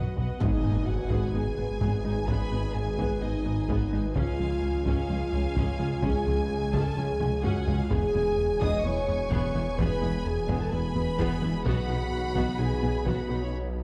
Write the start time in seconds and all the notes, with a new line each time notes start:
Already playing: D#3 F#3 B3 F#4 B4 D#5 F#5
0.16 B1 B2 F#4 B4 D#5 F#5, taiko low
0.40 G#1 G#2 D#3 G#3 B3 D#4 G#4 B4 D#5 G#5, taiko, impact
0.63 G#1 G#2 B3 D#4
0.87 G#2 F#4 F#5
1.10 G#1 G#2 G#3 B3 G#4, taiko
1.34 G#1 G#2 B3 D#4 G#4 G#5
1.57 G#1 G#2 B3
1.81 G#1 G#2 G#3 B3 G#4, taiko
2.04 G#1 G#2 G#3 B3 D#4 G#4 G#5
2.28 G#1 G#2 G#3 B3 G#4 B4 B5, taiko
2.52 G#1 G#2 B3 D#4
2.74 G#2 G#4 G#5
2.98 G#1 G#2 G#3 B3 G#4, taiko
3.22 G#1 G#2 B3 D#4 D#5
3.45 G#1 G#2 B3
3.68 G#1 G#2 G#3 B3 G#4, taiko
3.92 G#1 G#2 G#3 B3 D#4
4.15 C#2 C#3 G#3 C#4 F4 G#4 C#5 F5 G#5, taiko
4.39 C#2 F3 C#4 F4
4.62 C#2
4.86 C#2 C#3 C#4 F4 G#4 F5, taiko
5.09 C#2 F3 C#4 F4
5.33 C#2 F3 C#4
5.56 C#2 C#3 C#4 G#4, taiko
5.79 C#2 C#3 G#3 C#4 F4
6.02 C#2 C#3 C#4 G#4 G#5, taiko
6.26 C#2 F3 C#4 F4
6.51 C#2
6.73 C#2 C#3 C#4 G#4 A4 A5, taiko
6.96 C#2 F3 C#4 F4 G#4 G#5
7.19 C#2 F3 C#4, taiko mid
7.43 C#2 C#3 C#4 F#4 G#4 F#5, taiko low-mid
7.66 C#2 C#3 G#3 C#4 F4, taiko low
7.79 F4 F5
7.90 E1 E2 E3 B3 G#4 B4 G#5, taiko
8.13 E1 E2 G#3 B3 E4
8.38 E2
8.60 E1 E2 E3 B3 G#4 D#5 D#6, taiko
8.84 E1 E2 G#3 B3 E4 C#5 C#6
9.08 E1 E2 G#3 B3
9.31 E1 E2 E3 B3 G#4, taiko
9.55 E1 E2 E3 B3 E4
9.78 E1 E2 E3 B3 G#4 B4 B5, taiko
10.02 E1 E2 G#3 B3 E4
10.25 E2 G#4 G#5
10.49 E1 E2 E3 B3 G#4, taiko
10.61 A4 A5
10.72 E1 E2 G#3 B3 E4 B4 B5
10.95 E1 E2 G#3 B3
11.19 E1 E2 E3 B3 G#4, taiko
11.42 E1 E2 E3 B3 E4
11.65 B1 B2 F#3 B3 F#4 B4 F#5 B5, taiko
11.89 B1 B2 B3 D#4
12.12 B2
12.35 B1 B2 B3 F#4, taiko
12.59 B1 B2 B3 D#4 G#4 G#5
12.83 B1 B2 B3 D#4
13.06 B1 B2 B3 F#4 F#5, taiko
13.29 B1 B2 B3 D#4 F#4
13.41 C#4 C#5